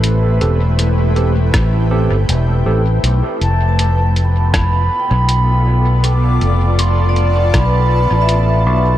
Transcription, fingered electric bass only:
0, 0, Header, 1, 2, 480
1, 0, Start_track
1, 0, Tempo, 750000
1, 25, Time_signature, 4, 2, 24, 8
1, 5747, End_track
2, 0, Start_track
2, 0, Title_t, "Fingered electric bass"
2, 0, Program_c, 0, 33
2, 0, Note_on_c, 0, 33, 93
2, 243, Note_off_c, 0, 33, 0
2, 264, Note_on_c, 0, 28, 85
2, 963, Note_off_c, 0, 28, 0
2, 984, Note_on_c, 0, 33, 96
2, 1325, Note_off_c, 0, 33, 0
2, 1348, Note_on_c, 0, 31, 78
2, 1450, Note_off_c, 0, 31, 0
2, 1464, Note_on_c, 0, 28, 89
2, 1677, Note_off_c, 0, 28, 0
2, 1703, Note_on_c, 0, 33, 71
2, 1917, Note_off_c, 0, 33, 0
2, 1942, Note_on_c, 0, 35, 92
2, 2053, Note_off_c, 0, 35, 0
2, 2184, Note_on_c, 0, 29, 83
2, 3122, Note_off_c, 0, 29, 0
2, 3269, Note_on_c, 0, 35, 98
2, 4083, Note_off_c, 0, 35, 0
2, 4105, Note_on_c, 0, 29, 86
2, 4803, Note_off_c, 0, 29, 0
2, 4824, Note_on_c, 0, 35, 98
2, 5165, Note_off_c, 0, 35, 0
2, 5189, Note_on_c, 0, 33, 80
2, 5544, Note_off_c, 0, 33, 0
2, 5544, Note_on_c, 0, 35, 77
2, 5747, Note_off_c, 0, 35, 0
2, 5747, End_track
0, 0, End_of_file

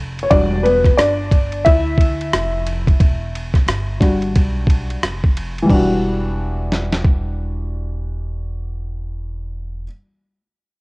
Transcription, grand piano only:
0, 0, Header, 1, 2, 480
1, 0, Start_track
1, 0, Key_signature, 1, "minor"
1, 0, Tempo, 674157
1, 214, Time_signature, 4, 2, 24, 8
1, 7691, End_track
2, 0, Start_track
2, 0, Title_t, "Grand piano"
2, 0, Program_c, 0, 0
2, 162, Note_on_c, 0, 73, 63
2, 208, Note_off_c, 0, 73, 0
2, 215, Note_on_c, 0, 55, 49
2, 217, Note_on_c, 0, 74, 92
2, 218, Note_on_c, 0, 62, 72
2, 225, Note_on_c, 0, 66, 57
2, 445, Note_off_c, 0, 62, 0
2, 450, Note_on_c, 0, 71, 80
2, 462, Note_on_c, 0, 59, 59
2, 463, Note_off_c, 0, 74, 0
2, 554, Note_off_c, 0, 55, 0
2, 560, Note_off_c, 0, 66, 0
2, 682, Note_off_c, 0, 59, 0
2, 694, Note_on_c, 0, 74, 83
2, 700, Note_off_c, 0, 71, 0
2, 702, Note_on_c, 0, 62, 72
2, 1150, Note_off_c, 0, 62, 0
2, 1173, Note_on_c, 0, 76, 87
2, 1178, Note_on_c, 0, 64, 69
2, 1189, Note_off_c, 0, 74, 0
2, 2849, Note_on_c, 0, 55, 43
2, 2852, Note_on_c, 0, 62, 44
2, 2858, Note_on_c, 0, 66, 51
2, 3543, Note_off_c, 0, 55, 0
2, 3545, Note_off_c, 0, 62, 0
2, 3545, Note_off_c, 0, 76, 0
2, 3548, Note_off_c, 0, 64, 0
2, 3548, Note_off_c, 0, 66, 0
2, 4004, Note_on_c, 0, 52, 67
2, 4028, Note_on_c, 0, 55, 60
2, 4058, Note_on_c, 0, 62, 59
2, 4085, Note_on_c, 0, 66, 73
2, 6989, Note_off_c, 0, 52, 0
2, 7001, Note_off_c, 0, 55, 0
2, 7016, Note_off_c, 0, 62, 0
2, 7029, Note_off_c, 0, 66, 0
2, 7691, End_track
0, 0, End_of_file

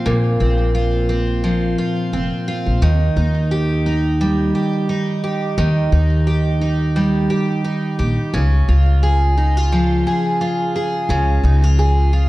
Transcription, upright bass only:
0, 0, Header, 1, 2, 480
1, 0, Start_track
1, 0, Key_signature, -3, "major"
1, 0, Tempo, 689655
1, 42, Time_signature, 4, 2, 24, 8
1, 8553, End_track
2, 0, Start_track
2, 0, Title_t, "Upright bass"
2, 0, Program_c, 0, 32
2, 42, Note_on_c, 0, 34, 99
2, 248, Note_off_c, 0, 34, 0
2, 281, Note_on_c, 0, 34, 93
2, 1214, Note_off_c, 0, 34, 0
2, 1480, Note_on_c, 0, 29, 80
2, 1593, Note_off_c, 0, 29, 0
2, 1854, Note_on_c, 0, 34, 87
2, 1943, Note_off_c, 0, 34, 0
2, 1960, Note_on_c, 0, 39, 95
2, 2166, Note_off_c, 0, 39, 0
2, 2202, Note_on_c, 0, 39, 103
2, 3134, Note_off_c, 0, 39, 0
2, 3881, Note_on_c, 0, 39, 98
2, 4087, Note_off_c, 0, 39, 0
2, 4121, Note_on_c, 0, 39, 98
2, 5054, Note_off_c, 0, 39, 0
2, 5562, Note_on_c, 0, 34, 94
2, 5674, Note_off_c, 0, 34, 0
2, 5802, Note_on_c, 0, 37, 105
2, 6007, Note_off_c, 0, 37, 0
2, 6043, Note_on_c, 0, 37, 96
2, 6975, Note_off_c, 0, 37, 0
2, 7719, Note_on_c, 0, 37, 105
2, 7926, Note_off_c, 0, 37, 0
2, 7959, Note_on_c, 0, 37, 107
2, 8553, Note_off_c, 0, 37, 0
2, 8553, End_track
0, 0, End_of_file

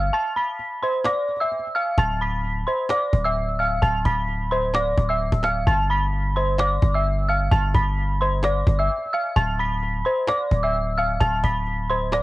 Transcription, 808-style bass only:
0, 0, Header, 1, 2, 480
1, 0, Start_track
1, 0, Tempo, 461538
1, 136, Time_signature, 4, 2, 24, 8
1, 12716, End_track
2, 0, Start_track
2, 0, Title_t, "808-style bass"
2, 0, Program_c, 0, 38
2, 0, Note_on_c, 0, 31, 105
2, 107, Note_off_c, 0, 31, 0
2, 2056, Note_on_c, 0, 26, 110
2, 2747, Note_off_c, 0, 26, 0
2, 3254, Note_on_c, 0, 26, 105
2, 3946, Note_off_c, 0, 26, 0
2, 3976, Note_on_c, 0, 26, 111
2, 4206, Note_off_c, 0, 26, 0
2, 4215, Note_on_c, 0, 26, 104
2, 5137, Note_off_c, 0, 26, 0
2, 5175, Note_on_c, 0, 26, 108
2, 5521, Note_off_c, 0, 26, 0
2, 5536, Note_on_c, 0, 26, 99
2, 5882, Note_off_c, 0, 26, 0
2, 5896, Note_on_c, 0, 31, 107
2, 7055, Note_off_c, 0, 31, 0
2, 7095, Note_on_c, 0, 31, 103
2, 7787, Note_off_c, 0, 31, 0
2, 7815, Note_on_c, 0, 31, 112
2, 8046, Note_off_c, 0, 31, 0
2, 8054, Note_on_c, 0, 31, 102
2, 8976, Note_off_c, 0, 31, 0
2, 9014, Note_on_c, 0, 31, 101
2, 9246, Note_off_c, 0, 31, 0
2, 9736, Note_on_c, 0, 26, 113
2, 10427, Note_off_c, 0, 26, 0
2, 10935, Note_on_c, 0, 26, 104
2, 11626, Note_off_c, 0, 26, 0
2, 11655, Note_on_c, 0, 26, 112
2, 11886, Note_off_c, 0, 26, 0
2, 11895, Note_on_c, 0, 26, 102
2, 12716, Note_off_c, 0, 26, 0
2, 12716, End_track
0, 0, End_of_file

